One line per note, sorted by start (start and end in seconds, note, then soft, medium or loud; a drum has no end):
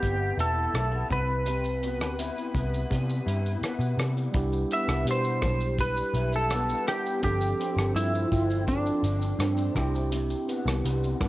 0.00 0.31 G1 medium
0.00 1.08 C3 medium
0.00 2.90 G3 medium
0.00 0.74 B3 medium
0.00 0.37 E4 medium
0.00 0.40 G4 medium
0.00 kick medium
0.00 closed hi-hat medium
0.37 0.66 E1 medium
0.37 2.18 E4 medium
0.37 1.07 A4 medium
0.37 closed hi-hat medium
0.74 1.03 B1 medium
0.74 0.91 A3 medium
0.74 cross-stick medium
0.74 closed hi-hat medium
0.91 1.17 B3 soft
1.10 2.00 C2 loud
1.10 1.46 C3 medium
1.10 3.96 B4 loud
1.10 kick loud
1.10 closed hi-hat medium
1.46 4.35 C3 medium
1.46 closed hi-hat medium
1.46 shaker medium
1.65 shaker medium
1.83 2.54 B3 medium
1.83 closed hi-hat medium
1.83 shaker soft
2.00 2.29 D2 medium
2.00 cross-stick medium
2.00 shaker soft
2.19 3.25 E4 medium
2.19 closed hi-hat medium
2.19 shaker medium
2.38 shaker soft
2.54 2.83 C2 medium
2.54 3.62 B3 medium
2.54 kick medium
2.54 closed hi-hat medium
2.54 shaker medium
2.74 shaker soft
2.90 3.19 C3 loud
2.90 3.99 G3 medium
2.90 kick medium
2.90 closed hi-hat medium
2.90 shaker medium
3.10 shaker soft
3.25 3.55 G2 medium
3.25 6.14 E4 medium
3.25 closed hi-hat medium
3.25 shaker medium
3.46 shaker soft
3.61 4.71 B3 medium
3.61 muted picked electric bass stroke soft
3.61 cross-stick medium
3.61 closed hi-hat medium
3.61 shaker medium
3.79 3.94 B2 medium
3.79 shaker soft
3.97 4.27 C3 medium
3.97 5.07 G3 medium
3.97 cross-stick medium
3.97 closed hi-hat medium
3.97 shaker medium
4.17 shaker soft
4.31 4.63 C2 loud
4.31 7.18 G3 medium
4.31 7.19 D4 medium
4.31 7.20 E4 medium
4.31 kick loud
4.31 closed hi-hat medium
4.31 shaker medium
4.36 7.20 G4 medium
4.53 shaker soft
4.71 5.43 B3 medium
4.71 5.06 E5 medium
4.71 closed hi-hat soft
4.71 shaker medium
4.88 5.03 C2 loud
4.88 cross-stick medium
4.88 shaker medium
5.05 5.44 B2 medium
5.05 5.79 G3 medium
5.05 closed hi-hat medium
5.05 shaker medium
5.11 5.80 C5 medium
5.24 shaker soft
5.42 6.00 B1 medium
5.42 kick medium
5.42 cross-stick medium
5.42 closed hi-hat medium
5.42 shaker medium
5.61 shaker soft
5.79 6.86 G3 medium
5.79 6.35 B4 loud
5.79 kick medium
5.79 closed hi-hat medium
5.79 shaker medium
5.97 shaker soft
6.14 6.72 B1 medium
6.14 7.30 E4 medium
6.14 closed hi-hat medium
6.14 shaker medium
6.33 6.85 A4 loud
6.33 shaker medium
6.50 7.30 B3 medium
6.50 cross-stick medium
6.50 closed hi-hat medium
6.50 shaker medium
6.69 shaker medium
6.86 7.94 G3 medium
6.86 7.21 G4 medium
6.86 cross-stick medium
6.86 closed hi-hat soft
6.86 shaker medium
7.06 shaker soft
7.20 7.52 G1 loud
7.20 9.83 G2 medium
7.20 9.72 F3 medium
7.20 9.70 C4 medium
7.20 9.71 D4 medium
7.20 7.92 G4 medium
7.20 kick loud
7.20 closed hi-hat medium
7.20 shaker medium
7.26 9.73 A4 medium
7.41 shaker medium
7.59 8.31 C4 medium
7.59 closed hi-hat medium
7.59 shaker soft
7.76 7.91 G1 medium
7.76 cross-stick medium
7.76 shaker soft
7.95 8.24 G2 medium
7.95 9.83 F3 medium
7.95 8.64 E4 medium
7.95 closed hi-hat medium
7.95 shaker medium
8.14 shaker soft
8.32 8.89 G1 medium
8.32 9.40 C4 medium
8.32 kick medium
8.32 closed hi-hat medium
8.32 shaker medium
8.50 shaker soft
8.68 9.75 D3 medium
8.68 9.72 D4 medium
8.68 kick medium
8.68 closed hi-hat medium
8.68 shaker medium
8.86 shaker soft
9.03 9.32 G1 medium
9.03 9.84 D4 medium
9.03 closed hi-hat medium
9.03 shaker medium
9.22 shaker medium
9.39 9.68 G2 loud
9.39 10.47 C4 medium
9.39 cross-stick medium
9.39 closed hi-hat medium
9.39 shaker medium
9.57 shaker soft
9.72 10.33 C2 loud
9.72 10.11 C3 medium
9.72 11.28 C4 medium
9.72 11.28 D4 medium
9.72 11.28 E4 medium
9.72 kick loud
9.72 cross-stick loud
9.72 closed hi-hat medium
9.72 shaker medium
9.78 11.28 G4 medium
9.95 shaker soft
10.12 11.28 C3 medium
10.12 closed hi-hat medium
10.12 shaker medium
10.30 shaker medium
10.48 11.19 B3 medium
10.48 closed hi-hat medium
10.48 shaker medium
10.66 10.80 C2 loud
10.66 cross-stick medium
10.66 shaker soft
10.84 11.13 C2 medium
10.84 11.28 G3 medium
10.84 closed hi-hat medium
10.84 shaker medium
11.04 shaker medium
11.20 11.28 G2 medium
11.20 11.28 B3 medium
11.20 kick medium
11.20 cross-stick medium
11.20 closed hi-hat medium
11.20 shaker medium